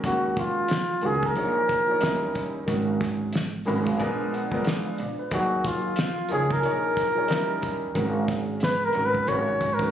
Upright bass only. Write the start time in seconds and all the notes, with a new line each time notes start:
0.04 D#2
1.03 C#2
1.36 A#1
2.02 D#2
2.68 G#1
3.68 G#1
4.01 A#1
5.00 A#1
5.31 D#2
6.32 C#2
6.64 A#1
7.30 D#2
7.95 G#1
8.95 G#1
9.28 G#1
9.48 G#1
9.61 G#2